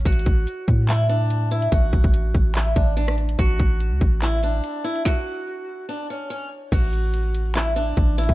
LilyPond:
<<
  \new Staff \with { instrumentName = "Steel-string acoustic guitar" } { \time 4/4 \key fis \minor \tempo 4 = 144 fis'2 e'8 d'4 e'8 | fis'2 e'8 d'8 d'8 r8 | fis'2 e'8 d'4 e'8 | fis'2 d'8 cis'8 cis'8 r8 |
fis'2 e'8 d'4 e'8 | }
  \new Staff \with { instrumentName = "808-style bass" } { \clef bass \time 4/4 \key fis \minor a,,8 a,,8 r8 a,2~ a,8 | a,,8 a,,16 a,,8. a,,4 a,,4. | a,,8 a,,8. cis,16 a,,4. r4 | r1 |
a,,2. a,,8. a,,16 | }
  \new DrumStaff \with { instrumentName = "Drums" } \drummode { \time 4/4 \tuplet 3/2 { <hh bd>16 hh16 hh16 <hh bd>16 r16 r16 } hh8 <hh bd>8 <hc hh>8 hh8 hh8 hh16 hh16 | <hh bd>8 <hh bd>16 bd16 hh8 <hh bd>8 <hc hh>8 <hh bd>8 hh16 ss16 hh16 hh16 | <hh bd>8 <hh bd>8 hh8 <hh bd>8 <hc hh>8 hh8 hh8 hh16 hh16 | <bd sn>4 r4 r4 r4 |
<cymc hh bd>8 hh8 hh8 hh8 <hc hh>8 hh8 <hh bd>8 hh32 hh32 <hh bd>16 | }
>>